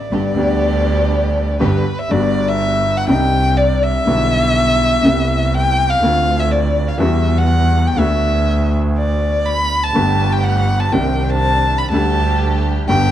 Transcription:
0.00 1.60 D5 medium
0.11 0.32 G1 soft
0.11 0.32 G2 medium
0.11 0.32 D3 soft
0.11 0.32 G3 soft
0.11 0.32 B3 soft
0.11 0.33 B3 soft
0.11 0.33 D4 soft
0.11 0.32 G4 soft
0.11 0.33 G4 medium
0.35 1.54 D2 medium
0.35 1.55 D2 medium
0.35 1.55 D3 medium
0.35 1.54 G3 medium
0.35 1.55 B3 medium
0.35 1.55 D4 medium
0.35 1.55 G4 medium
0.35 1.56 G4 medium
1.60 1.82 G1 medium
1.60 1.82 G2 medium
1.60 1.82 D3 medium
1.60 1.82 G3 medium
1.60 1.82 B3 medium
1.60 1.82 D4 medium
1.60 1.82 G4 medium
1.60 1.83 G4 medium
1.60 2.01 B4 medium
1.99 2.13 E5 medium
2.09 3.05 G1 medium
2.09 3.05 G2 medium
2.09 3.04 D3 medium
2.09 3.05 G3 soft
2.09 3.06 B3 medium
2.09 3.06 F#4 medium
2.09 2.50 D5 medium
2.49 2.99 E5 loud
2.97 3.09 F#5 medium
3.07 4.03 C2 medium
3.07 4.03 C3 medium
3.07 4.03 G3 medium
3.07 4.03 C4 medium
3.07 4.02 D4 medium
3.07 4.04 D#4 medium
3.07 3.59 G5 loud
3.57 3.85 D5 loud
3.83 5.56 E5 loud
4.05 5.00 B1 medium
4.05 5.01 B1 medium
4.05 5.00 B2 medium
4.05 4.99 D3 medium
4.05 5.00 G3 medium
4.05 5.00 B3 medium
4.05 5.01 E4 medium
5.04 5.97 C2 medium
5.04 5.97 C3 medium
5.04 5.97 A3 medium
5.04 5.98 B3 medium
5.04 5.98 E4 medium
5.54 5.92 G5 loud
5.90 6.41 F5 loud
6.02 6.95 D2 medium
6.02 6.95 D3 medium
6.02 6.95 A3 medium
6.02 6.96 C4 medium
6.02 6.96 F4 medium
6.40 6.53 E5 medium
6.52 6.90 D5 medium
6.88 7.00 F5 medium
6.98 7.93 E2 medium
6.98 7.94 E2 medium
6.98 7.93 E3 medium
6.98 7.93 G3 medium
6.98 7.94 B3 medium
6.98 7.39 E5 medium
7.02 7.94 F#4 medium
7.38 7.89 F#5 medium
7.87 8.01 G5 medium
7.97 9.85 D2 medium
7.97 9.86 D2 medium
7.97 9.86 D3 medium
7.97 9.85 A3 medium
7.97 9.86 B3 medium
7.97 9.86 F#4 medium
7.97 8.73 E5 medium
8.98 9.47 D5 medium
9.46 9.85 B5 loud
9.83 10.34 A5 loud
9.93 10.89 G1 medium
9.93 10.89 G2 medium
9.93 10.88 D3 medium
9.93 10.89 A3 medium
9.93 10.89 B3 medium
9.93 10.90 G4 medium
10.32 10.45 G5 medium
10.44 10.82 F#5 medium
10.80 10.94 A5 medium
10.92 11.87 C2 medium
10.92 11.87 C3 medium
10.92 11.86 D#3 medium
10.92 11.87 C4 medium
10.92 11.87 D4 medium
10.92 11.88 G4 medium
10.92 11.31 G5 medium
11.30 11.80 A5 loud
11.78 11.91 B5 medium
11.90 12.84 D2 medium
11.90 12.85 D2 medium
11.90 11.92 D3 medium
11.90 12.85 D3 medium
11.90 12.84 G3 medium
11.90 12.84 A3 medium
11.90 12.85 A3 medium
11.90 12.84 D4 medium
11.90 12.85 G4 medium
11.90 12.61 A5 medium
11.95 12.86 G4 medium
12.87 13.11 G1 medium
12.87 13.11 G2 medium
12.87 13.11 D3 medium
12.87 13.11 G3 medium
12.87 13.11 B3 medium
12.87 13.11 D4 medium
12.87 13.11 G4 medium
12.87 13.11 G5 loud

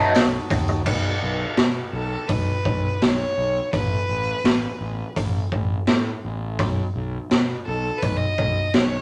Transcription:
0.00 0.21 B2 medium
0.00 0.21 F#3 medium
0.00 0.21 A3 medium
0.00 0.21 D#4 medium
0.00 0.83 D#4 medium
0.00 0.82 F#4 medium
0.00 0.82 A4 medium
0.00 0.16 B4 loud
0.00 0.82 C#5 medium
0.15 0.38 B1 medium
0.15 snare loud
0.15 open hi-hat medium
0.15 tambourine medium
0.50 0.86 D#2 medium
0.50 muted overdriven electric guitar stroke soft
0.50 kick medium
0.50 open hi-hat medium
0.50 tambourine soft
0.68 muted overdriven electric guitar stroke soft
0.68 tambourine medium
0.86 1.08 B1 medium
0.86 kick medium
0.86 crash medium
1.23 1.44 B1 medium
1.57 1.80 B2 medium
1.57 snare loud
1.57 open hi-hat soft
1.92 2.15 B1 medium
1.92 2.29 A4 medium
2.27 2.51 B1 medium
2.27 3.04 B4 medium
2.27 kick medium
2.27 open hi-hat soft
2.65 2.88 B1 medium
2.65 kick medium
3.02 3.24 B1 medium
3.02 3.73 C#5 loud
3.02 snare loud
3.02 open hi-hat soft
3.38 3.59 B1 medium
3.73 3.95 A1 medium
3.73 5.12 B4 loud
3.73 kick medium
3.73 open hi-hat soft
4.09 4.31 A1 medium
4.44 4.66 A1 medium
4.44 snare loud
4.44 open hi-hat medium
4.81 5.02 A1 medium
5.16 5.38 A1 medium
5.16 kick medium
5.16 open hi-hat soft
5.52 5.74 A1 medium
5.52 kick medium
5.87 6.10 A2 medium
5.87 snare loud
5.87 open hi-hat soft
6.25 6.59 A1 medium
6.59 6.81 B1 medium
6.59 kick medium
6.59 open hi-hat soft
6.96 7.17 B1 medium
7.31 7.54 B2 medium
7.31 snare loud
7.31 open hi-hat soft
7.66 7.89 B1 medium
7.66 7.99 A4 medium
7.98 8.19 B4 medium
8.02 8.25 B1 medium
8.02 kick medium
8.02 open hi-hat soft
8.17 8.76 D#5 medium
8.38 8.60 B1 medium
8.38 kick medium
8.74 8.96 B1 medium
8.74 9.02 C#5 medium
8.74 snare loud
8.74 open hi-hat soft

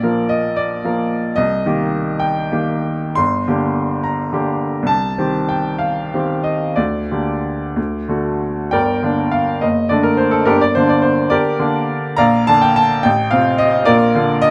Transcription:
0.00 1.41 A#1 soft
0.00 0.80 F3 soft
0.00 0.80 A#3 soft
0.00 0.80 A#4 soft
0.00 0.30 D5 medium
0.29 0.57 D#5 medium
0.56 1.37 D5 medium
0.84 1.34 F3 soft
0.84 1.34 A#3 soft
0.84 1.35 A#4 soft
1.36 1.65 C2 soft
1.36 2.21 D#5 medium
1.66 2.48 D#3 soft
1.66 2.49 A#3 soft
1.66 2.49 G4 soft
2.20 3.17 G5 medium
2.52 3.14 D#3 soft
2.52 3.14 A#3 soft
2.52 3.14 G4 soft
3.15 3.47 G1 soft
3.15 4.03 C6 medium
3.48 4.28 D3 soft
3.48 4.29 A#3 soft
3.48 4.29 G4 soft
4.04 4.32 A#5 soft
4.33 4.85 D3 soft
4.33 4.85 A#3 soft
4.33 4.86 G4 soft
4.83 5.15 C2 soft
4.83 5.49 A5 medium
5.18 6.09 D#3 soft
5.18 6.09 C4 soft
5.18 6.10 G4 soft
5.49 5.81 G5 medium
5.79 6.44 F5 medium
6.14 6.73 D#3 soft
6.14 6.74 C4 soft
6.14 6.74 G4 soft
6.43 6.77 D#5 medium
6.76 7.09 D2 soft
6.76 8.40 D5 soft
7.11 7.73 D3 soft
7.11 7.73 A#3 soft
7.11 7.73 G4 soft
7.76 8.08 D2 soft
8.09 8.68 D3 soft
8.09 8.69 A3 soft
8.09 8.69 F#4 soft
8.71 9.02 G1 soft
8.71 9.29 A#4 medium
8.71 9.29 D5 soft
8.71 9.33 G5 medium
9.03 9.59 D3 soft
9.03 9.59 A#3 soft
9.03 9.60 D4 soft
9.31 9.62 F5 medium
9.61 9.90 F#1 soft
9.61 9.90 D#5 medium
9.89 10.44 D3 soft
9.89 10.44 A3 soft
9.89 10.44 D4 soft
9.89 10.04 D5 medium
10.03 10.19 A#4 medium
10.17 10.33 C5 medium
10.31 10.47 A4 medium
10.46 10.76 G1 soft
10.46 10.61 D4 medium
10.46 10.61 G4 medium
10.46 10.61 A#4 medium
10.61 10.76 D5 medium
10.75 11.56 D3 soft
10.75 11.56 A#3 soft
10.75 11.57 D4 soft
10.75 10.90 C5 medium
10.89 11.04 D5 medium
11.02 11.31 C5 medium
11.30 12.13 G4 medium
11.30 12.13 A#4 medium
11.30 12.17 D5 medium
11.59 12.14 D3 soft
11.59 12.14 A#3 soft
11.59 12.14 D4 soft
12.17 12.47 A#1 medium
12.17 12.45 D5 medium
12.17 12.45 F5 medium
12.17 12.47 A#5 medium
12.47 13.00 D3 soft
12.47 13.01 A#3 soft
12.47 13.01 D4 soft
12.47 12.62 A5 medium
12.62 12.76 G5 medium
12.76 13.04 A5 medium
13.03 13.31 A1 medium
13.03 13.31 G5 medium
13.31 13.83 C3 soft
13.31 13.83 C4 soft
13.31 13.83 F4 soft
13.31 13.58 F5 medium
13.58 13.86 D#5 medium
13.85 14.13 A#1 medium
13.85 14.14 F4 medium
13.85 14.38 A#4 medium
13.85 14.41 D5 medium
14.15 14.50 D3 soft
14.15 14.50 A#3 soft
14.15 14.50 F4 medium
14.42 14.50 D#5 medium

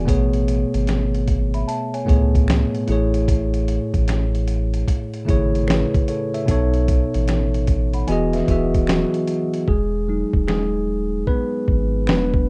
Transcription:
0.00 0.10 E3 medium
0.00 0.10 F#4 medium
0.00 0.10 E5 medium
0.05 0.64 A1 loud
0.05 1.28 B2 medium
0.05 1.28 A3 medium
0.05 1.29 B3 medium
0.05 1.29 G#4 medium
0.05 kick medium
0.09 1.30 C#5 medium
0.09 closed hi-hat medium
0.33 closed hi-hat soft
0.48 closed hi-hat medium
0.74 1.64 G#1 medium
0.74 closed hi-hat medium
0.87 finger snap medium
0.87 snare medium
0.87 closed hi-hat medium
1.15 closed hi-hat soft
1.28 kick medium
1.28 closed hi-hat medium
1.54 1.67 E5 medium
1.54 1.68 B5 medium
1.54 closed hi-hat soft
1.68 1.92 E5 medium
1.68 1.92 A5 medium
1.68 closed hi-hat medium
1.94 2.84 C#5 medium
1.94 2.84 G#5 medium
1.94 closed hi-hat soft
2.05 2.65 C#2 medium
2.05 2.86 A2 medium
2.05 2.87 A3 medium
2.05 2.88 B3 medium
2.05 2.88 G#4 medium
2.05 kick medium
2.09 2.89 C#5 medium
2.09 closed hi-hat medium
2.35 kick medium
2.35 closed hi-hat soft
2.48 finger snap medium
2.48 snare loud
2.48 closed hi-hat medium
2.75 closed hi-hat soft
2.87 3.79 A1 medium
2.87 4.18 A2 medium
2.87 4.18 A3 medium
2.87 4.19 E4 medium
2.87 4.20 G#4 medium
2.87 closed hi-hat medium
2.92 4.20 C#5 medium
3.14 closed hi-hat medium
3.28 kick loud
3.28 closed hi-hat medium
3.54 closed hi-hat soft
3.68 closed hi-hat medium
3.94 4.84 A1 medium
3.94 kick medium
3.94 closed hi-hat soft
4.08 finger snap medium
4.08 snare medium
4.08 closed hi-hat medium
4.35 closed hi-hat soft
4.48 closed hi-hat medium
4.74 closed hi-hat soft
4.88 kick medium
4.88 closed hi-hat medium
5.14 closed hi-hat soft
5.25 5.85 G#1 medium
5.25 6.20 C#3 medium
5.25 6.21 A3 medium
5.25 6.22 E4 medium
5.25 5.67 G#4 medium
5.25 kick medium
5.25 closed hi-hat medium
5.30 5.69 C#5 loud
5.55 closed hi-hat soft
5.67 6.06 G#4 medium
5.67 6.06 B4 medium
5.67 finger snap medium
5.67 snare loud
5.67 closed hi-hat medium
5.94 kick loud
5.94 closed hi-hat soft
6.08 6.33 A4 medium
6.08 6.33 C#5 medium
6.08 closed hi-hat medium
6.34 6.50 C#5 medium
6.34 6.72 E5 medium
6.34 closed hi-hat soft
6.46 7.05 B1 loud
6.46 7.68 B2 medium
6.46 7.69 B3 medium
6.46 7.69 D#4 medium
6.46 kick medium
6.46 closed hi-hat medium
6.50 7.70 A4 medium
6.50 7.71 C#5 loud
6.74 closed hi-hat soft
6.88 kick medium
6.88 closed hi-hat medium
7.14 8.05 A1 medium
7.14 closed hi-hat medium
7.28 finger snap medium
7.28 snare medium
7.28 closed hi-hat medium
7.54 closed hi-hat soft
7.67 kick medium
7.67 closed hi-hat medium
7.93 8.08 F#5 medium
7.93 8.08 B5 medium
7.93 closed hi-hat soft
8.07 8.43 E1 loud
8.07 8.42 E3 medium
8.07 8.43 B3 medium
8.07 8.43 F#4 medium
8.07 8.44 G#4 medium
8.07 8.32 D#5 medium
8.07 8.32 G#5 medium
8.07 closed hi-hat medium
8.12 8.45 D#5 medium
8.33 9.50 B4 medium
8.33 9.50 E5 medium
8.33 snare soft
8.33 closed hi-hat soft
8.47 9.04 D#1 medium
8.47 9.41 E3 medium
8.47 9.42 B3 medium
8.47 8.86 F#4 medium
8.47 9.43 G#4 medium
8.47 kick medium
8.47 closed hi-hat medium
8.51 9.43 E5 loud
8.74 kick medium
8.74 closed hi-hat soft
8.87 9.65 F#3 medium
8.87 9.70 F#4 medium
8.87 finger snap medium
8.87 snare loud
8.87 closed hi-hat medium
9.14 closed hi-hat soft
9.27 closed hi-hat medium
9.54 closed hi-hat medium
9.68 10.24 E1 loud
9.68 10.08 G#3 medium
9.68 10.46 G#4 loud
9.68 kick medium
10.08 10.66 F#3 medium
10.08 10.48 G#3 soft
10.08 10.66 D#4 medium
10.33 11.24 D#1 medium
10.33 kick medium
10.48 11.25 G#3 medium
10.48 11.30 G#4 medium
10.48 finger snap medium
10.48 snare medium
11.27 12.05 B3 medium
11.27 12.04 B4 loud
11.27 kick medium
11.68 12.10 G#1 medium
11.68 kick medium
12.07 12.49 E1 loud
12.07 12.49 F#3 medium
12.07 12.49 G#3 soft
12.07 12.49 B3 medium
12.07 12.49 D4 medium
12.07 12.49 B4 medium
12.07 finger snap medium
12.07 snare loud
12.34 kick loud

